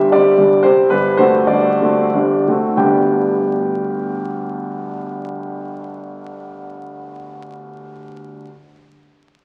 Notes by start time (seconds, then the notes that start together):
Already playing: G1 G2 G3 C4 G4 E5
0.12 G3 C4 G4 D5
0.38 G1 G2
0.63 G3 C4 G4 C5
0.90 G1 G2 B4
1.17 A3 C4 F#4 C5
1.47 G1 G2 D5
1.82 A3 C4 F#4
2.13 G1 G2
2.48 A3 C4 F#4
2.76 G1 D2 G3 B3 D4 G4 G5